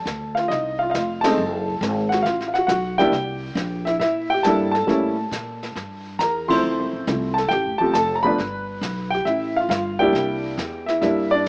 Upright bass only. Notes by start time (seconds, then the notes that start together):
0.05 D2
0.50 C2
0.94 F1
1.37 F#1
1.81 G#1
2.24 A1
2.68 B1
3.12 C2
3.55 A#1
3.99 A#2
4.45 G2
4.88 A2
5.31 A#2
5.75 G2
6.19 E2
6.63 D2
6.78 C2
6.93 A1
7.07 C2
7.51 A1
7.66 F1
7.80 D1
7.94 F1
8.38 G1
8.81 B1
9.25 A1
9.69 G1
10.13 C2
10.58 E2
11.02 G2